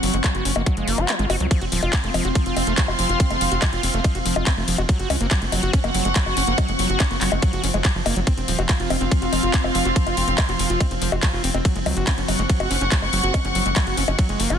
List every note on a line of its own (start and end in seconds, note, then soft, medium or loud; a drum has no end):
0.00 0.10 F#1 loud
0.00 1.50 F3 medium
0.00 0.12 F#3 medium
0.00 1.50 C4 medium
0.00 1.51 F#5 medium
0.00 1.51 C#6 medium
0.00 open hi-hat loud
0.14 0.21 F#1 medium
0.14 0.17 G#3 medium
0.14 closed hi-hat soft
0.24 0.34 F#3 medium
0.24 kick loud
0.24 clap loud
0.24 closed hi-hat loud
0.24 high bongo soft
0.35 0.42 F#1 medium
0.35 0.44 F#4 medium
0.35 closed hi-hat soft
0.45 0.53 F#1 loud
0.45 0.52 C#4 medium
0.45 open hi-hat loud
0.56 0.63 F#1 medium
0.56 0.62 A#3 medium
0.56 closed hi-hat soft
0.56 high bongo medium
0.66 0.76 F#3 medium
0.66 kick loud
0.66 closed hi-hat loud
0.66 swell medium
0.77 0.84 F#1 medium
0.77 0.89 G#3 medium
0.77 closed hi-hat soft
0.88 0.95 F#1 loud
0.88 1.00 A#3 medium
0.88 open hi-hat loud
0.98 1.05 F#1 medium
0.98 1.10 F#4 medium
0.98 closed hi-hat soft
0.98 high bongo soft
1.09 1.15 F#3 medium
1.09 clap loud
1.09 closed hi-hat loud
1.19 1.27 G#1 medium
1.19 1.26 G#3 loud
1.19 closed hi-hat soft
1.30 1.37 F#1 loud
1.30 1.36 F#4 medium
1.30 open hi-hat loud
1.30 high bongo medium
1.40 1.48 C#2 medium
1.40 1.47 F#3 medium
1.40 closed hi-hat soft
1.51 14.59 F3 medium
1.51 1.60 F3 medium
1.51 14.59 C4 medium
1.51 4.89 C4 medium
1.51 kick loud
1.51 closed hi-hat loud
1.51 ride medium
1.61 1.69 F1 medium
1.61 1.65 F#4 medium
1.61 closed hi-hat soft
1.72 1.79 D#1 loud
1.72 1.81 F3 medium
1.72 open hi-hat loud
1.76 4.89 F4 medium
1.83 1.90 F1 medium
1.83 1.92 F4 medium
1.83 closed hi-hat soft
1.83 high bongo soft
1.92 1.99 C4 medium
1.92 4.89 C6 medium
1.92 kick loud
1.92 clap loud
1.92 closed hi-hat loud
1.92 ride medium
2.03 2.11 F1 medium
2.03 2.10 A3 medium
2.03 4.89 F5 medium
2.03 closed hi-hat soft
2.14 2.22 F1 loud
2.14 2.24 F3 medium
2.14 open hi-hat loud
2.14 high bongo medium
2.25 2.32 F1 loud
2.25 2.29 F#4 medium
2.25 closed hi-hat soft
2.35 2.45 F3 medium
2.35 kick loud
2.35 closed hi-hat loud
2.35 ride medium
2.46 2.53 F1 medium
2.46 2.55 F4 medium
2.46 closed hi-hat soft
2.57 2.64 F1 loud
2.57 2.63 C4 medium
2.57 open hi-hat loud
2.57 high bongo soft
2.67 2.74 F1 medium
2.67 2.73 A3 medium
2.67 closed hi-hat soft
2.78 2.87 F3 medium
2.78 kick loud
2.78 clap loud
2.78 closed hi-hat loud
2.78 ride medium
2.88 2.96 F1 medium
2.88 2.92 F#4 medium
2.88 high bongo medium
2.99 3.06 F1 loud
2.99 3.08 F3 medium
2.99 open hi-hat loud
3.09 3.17 F1 medium
3.09 3.19 F4 medium
3.09 closed hi-hat soft
3.20 3.26 C4 medium
3.20 kick loud
3.20 closed hi-hat medium
3.20 ride medium
3.30 3.38 F1 medium
3.30 3.37 A3 medium
3.30 closed hi-hat soft
3.30 high bongo soft
3.41 3.48 F1 loud
3.41 3.50 F3 medium
3.41 open hi-hat loud
3.52 3.59 F1 medium
3.52 3.55 F#4 medium
3.52 closed hi-hat soft
3.62 3.72 F3 medium
3.62 kick loud
3.62 clap loud
3.62 closed hi-hat loud
3.62 ride medium
3.62 high bongo medium
3.73 3.80 F1 medium
3.73 3.82 F4 medium
3.73 closed hi-hat soft
3.83 3.91 F1 loud
3.83 3.90 C4 medium
3.83 open hi-hat loud
3.94 4.01 F1 medium
3.94 4.00 A3 medium
3.94 closed hi-hat soft
4.04 4.14 F3 medium
4.04 kick loud
4.04 closed hi-hat loud
4.04 ride medium
4.04 high bongo soft
4.15 4.22 F1 medium
4.15 4.19 F#4 medium
4.15 closed hi-hat soft
4.26 4.33 F1 loud
4.26 4.35 F3 medium
4.26 open hi-hat loud
4.36 4.43 F1 medium
4.36 4.46 F4 medium
4.36 closed hi-hat soft
4.36 high bongo medium
4.47 4.53 C4 medium
4.47 kick loud
4.47 clap loud
4.47 closed hi-hat medium
4.47 ride medium
4.57 4.65 F1 medium
4.57 4.64 A3 medium
4.68 4.75 F1 loud
4.68 4.77 F3 medium
4.68 open hi-hat loud
4.78 4.86 F1 medium
4.78 4.82 F#4 medium
4.78 closed hi-hat soft
4.78 high bongo soft
4.89 4.98 F#3 medium
4.89 kick loud
4.89 closed hi-hat medium
4.89 ride medium
4.99 5.07 F#1 medium
4.99 5.09 F#4 medium
4.99 closed hi-hat soft
5.04 8.27 F#5 medium
5.10 5.17 C#2 loud
5.10 5.16 C#4 medium
5.10 open hi-hat loud
5.10 high bongo medium
5.21 5.28 F#1 loud
5.21 5.27 A#3 medium
5.21 closed hi-hat soft
5.31 5.41 F#3 medium
5.31 kick loud
5.31 clap loud
5.31 closed hi-hat loud
5.31 ride medium
5.42 5.49 F#1 medium
5.42 5.46 G#3 medium
5.42 closed hi-hat soft
5.47 8.27 C#6 medium
5.52 5.60 F#1 loud
5.52 5.62 F#3 medium
5.52 open hi-hat loud
5.52 high bongo soft
5.63 5.70 F#1 medium
5.63 5.72 F#4 medium
5.63 closed hi-hat soft
5.73 5.80 C#4 medium
5.73 kick loud
5.73 closed hi-hat loud
5.73 ride medium
5.84 5.91 F#1 medium
5.84 5.90 A#3 medium
5.84 closed hi-hat soft
5.84 high bongo medium
5.95 6.02 F#1 loud
5.95 6.04 F#3 medium
5.95 open hi-hat loud
6.05 6.12 F#1 medium
6.05 6.09 G#3 medium
6.05 closed hi-hat soft
6.16 6.25 F#3 medium
6.16 kick loud
6.16 clap loud
6.16 closed hi-hat medium
6.16 ride medium
6.26 6.34 F#1 medium
6.26 6.36 F#4 medium
6.26 high bongo soft
6.37 6.44 F#1 loud
6.37 6.43 C#4 medium
6.37 open hi-hat loud
6.47 6.55 F#1 medium
6.47 6.54 A#3 medium
6.47 closed hi-hat soft
6.58 6.67 F#3 medium
6.58 kick loud
6.58 closed hi-hat medium
6.58 ride medium
6.58 high bongo medium
6.68 6.76 F#1 medium
6.68 6.72 G#3 medium
6.68 closed hi-hat soft
6.79 6.86 F#1 loud
6.79 6.88 F#3 medium
6.79 open hi-hat loud
6.90 6.97 F#1 medium
6.90 6.99 F#4 medium
6.90 closed hi-hat soft
7.00 7.06 C#4 medium
7.00 kick loud
7.00 clap loud
7.00 closed hi-hat medium
7.00 ride medium
7.00 high bongo soft
7.11 7.18 F#1 medium
7.11 7.17 A#3 medium
7.11 closed hi-hat soft
7.21 7.29 F#1 loud
7.21 7.31 F#3 medium
7.21 clap medium
7.21 open hi-hat loud
7.32 7.39 F#1 medium
7.32 7.36 G#3 medium
7.32 high bongo medium
7.42 7.52 F#3 medium
7.42 kick loud
7.42 closed hi-hat medium
7.42 ride medium
7.53 7.60 F#1 medium
7.53 7.62 F#4 medium
7.53 closed hi-hat soft
7.64 7.71 F#1 loud
7.64 7.67 C#4 medium
7.64 open hi-hat loud
7.74 7.82 F#1 medium
7.74 7.78 G#3 medium
7.74 closed hi-hat soft
7.74 high bongo soft
7.85 7.91 F#3 medium
7.85 kick loud
7.85 clap loud
7.85 closed hi-hat medium
7.85 ride medium
7.95 8.03 F#1 medium
7.95 8.02 F3 medium
8.06 8.13 F#1 loud
8.06 8.15 A#3 medium
8.06 open hi-hat loud
8.06 high bongo medium
8.16 8.24 F#1 loud
8.16 8.20 F#3 loud
8.16 closed hi-hat soft
8.27 8.33 C4 medium
8.27 11.65 C4 medium
8.27 kick loud
8.27 closed hi-hat medium
8.27 ride medium
8.37 8.45 F1 medium
8.37 8.41 C4 medium
8.37 11.65 F4 medium
8.37 closed hi-hat soft
8.48 8.55 D#1 loud
8.48 8.58 F3 medium
8.48 11.65 F5 medium
8.48 open hi-hat loud
8.59 8.66 F1 medium
8.59 8.62 F#4 medium
8.59 closed hi-hat soft
8.59 high bongo soft
8.69 8.79 F3 medium
8.69 kick loud
8.69 clap loud
8.69 closed hi-hat medium
8.69 ride medium
8.80 8.87 F1 medium
8.80 8.89 F4 medium
8.80 closed hi-hat soft
8.90 8.98 F1 loud
8.90 8.97 C4 medium
8.90 open hi-hat loud
8.90 high bongo medium
9.01 9.08 F1 medium
9.01 9.05 C4 medium
9.01 closed hi-hat soft
9.06 11.65 C6 medium
9.11 9.21 F3 medium
9.11 kick loud
9.11 closed hi-hat medium
9.11 ride medium
9.22 9.29 F1 medium
9.22 9.26 F#4 medium
9.22 closed hi-hat soft
9.33 9.40 F1 loud
9.33 9.42 F3 medium
9.33 open hi-hat loud
9.33 high bongo soft
9.43 9.51 F1 medium
9.43 9.53 F4 medium
9.43 closed hi-hat soft
9.54 9.60 C4 medium
9.54 kick loud
9.54 clap loud
9.54 closed hi-hat medium
9.54 ride medium
9.64 9.72 F1 medium
9.64 9.68 C4 medium
9.64 high bongo medium
9.75 9.82 F1 loud
9.75 9.84 F3 medium
9.75 open hi-hat loud
9.85 9.93 F1 medium
9.85 9.89 F#4 medium
9.85 closed hi-hat soft
9.96 10.05 F3 medium
9.96 kick loud
9.96 closed hi-hat medium
9.96 ride medium
10.07 10.14 F1 medium
10.07 10.16 F4 medium
10.07 closed hi-hat soft
10.07 high bongo soft
10.17 10.24 F1 loud
10.17 10.23 C4 medium
10.17 open hi-hat loud
10.28 10.35 F1 medium
10.28 10.31 C4 medium
10.28 closed hi-hat soft
10.38 10.48 F3 medium
10.38 kick loud
10.38 clap loud
10.38 closed hi-hat medium
10.38 ride medium
10.38 high bongo medium
10.49 10.56 F1 medium
10.49 10.53 F#4 medium
10.49 closed hi-hat soft
10.59 10.67 F1 medium
10.59 10.69 F3 medium
10.59 open hi-hat loud
10.70 10.77 F1 medium
10.70 10.79 F4 medium
10.70 closed hi-hat soft
10.80 10.87 C4 medium
10.80 kick loud
10.80 closed hi-hat medium
10.80 ride medium
10.80 high bongo soft
10.91 10.98 F1 medium
10.91 10.95 C4 medium
10.91 closed hi-hat soft
11.02 11.09 F1 loud
11.02 11.11 F3 medium
11.02 open hi-hat loud
11.12 11.20 F1 medium
11.12 11.16 F#4 medium
11.12 closed hi-hat soft
11.12 high bongo medium
11.23 11.32 F3 medium
11.23 kick loud
11.23 clap loud
11.23 closed hi-hat medium
11.23 ride medium
11.33 11.41 F1 medium
11.33 11.43 F4 medium
11.44 11.51 F1 loud
11.44 11.50 C4 medium
11.44 open hi-hat loud
11.54 11.62 F1 medium
11.54 11.58 C4 medium
11.54 high bongo soft
11.65 11.74 F#3 medium
11.65 kick loud
11.65 closed hi-hat loud
11.65 ride medium
11.76 11.83 F#1 medium
11.76 11.79 G#3 medium
11.76 closed hi-hat soft
11.86 11.93 C#2 loud
11.86 11.96 F#3 medium
11.86 open hi-hat loud
11.86 high bongo medium
11.97 12.04 F#1 loud
11.97 12.06 F#4 medium
11.97 closed hi-hat soft
12.07 12.14 C#4 medium
12.07 14.59 F#5 medium
12.07 kick loud
12.07 clap loud
12.07 closed hi-hat loud
12.07 ride medium
12.14 12.25 F#1 medium
12.14 12.22 C#4 medium
12.14 14.59 C#6 loud
12.14 closed hi-hat soft
12.28 12.36 F#1 loud
12.28 12.38 F#3 medium
12.28 open hi-hat loud
12.28 high bongo soft
12.39 12.46 F#1 medium
12.39 12.43 G#3 medium
12.39 closed hi-hat soft
12.49 12.59 F#3 medium
12.49 kick loud
12.49 closed hi-hat loud
12.49 ride medium
12.60 12.67 F#1 medium
12.60 12.69 F#4 medium
12.60 closed hi-hat soft
12.60 high bongo medium
12.71 12.78 F#1 loud
12.71 12.77 C#4 medium
12.71 open hi-hat loud
12.81 12.89 F#1 medium
12.81 12.85 C#4 medium
12.81 closed hi-hat soft
12.92 13.01 F#3 medium
12.92 kick loud
12.92 clap loud
12.92 closed hi-hat loud
12.92 ride medium
13.02 13.10 F#1 medium
13.02 13.06 G#3 medium
13.02 high bongo soft
13.13 13.20 F#1 loud
13.13 13.22 F#3 medium
13.13 open hi-hat loud
13.23 13.31 F#1 medium
13.23 13.33 F#4 medium
13.23 closed hi-hat soft
13.34 13.40 C#4 medium
13.34 kick loud
13.34 closed hi-hat loud
13.34 ride medium
13.34 high bongo medium
13.45 13.52 F#1 medium
13.45 13.48 C#4 medium
13.45 closed hi-hat soft
13.55 13.62 F#1 loud
13.55 13.65 F#3 medium
13.55 open hi-hat loud
13.66 13.73 F#1 medium
13.66 13.69 G#3 medium
13.66 closed hi-hat soft
13.76 13.86 F#3 medium
13.76 kick loud
13.76 clap loud
13.76 closed hi-hat loud
13.76 ride medium
13.76 high bongo soft
13.87 13.94 F#1 medium
13.87 13.96 F#4 medium
13.87 closed hi-hat soft
13.97 14.05 F#1 loud
13.97 14.04 C#4 medium
13.97 open hi-hat loud
14.08 14.15 F#1 medium
14.08 14.12 C#4 medium
14.08 closed hi-hat soft
14.08 high bongo medium
14.19 14.28 F#3 medium
14.19 kick loud
14.19 closed hi-hat loud
14.19 ride medium
14.29 14.36 F#1 medium
14.29 14.41 G#3 medium
14.29 closed hi-hat soft
14.40 14.47 F#1 loud
14.40 14.52 A#3 medium
14.40 open hi-hat loud
14.50 14.58 F#1 medium
14.50 14.59 F#4 medium
14.50 closed hi-hat soft
14.50 high bongo soft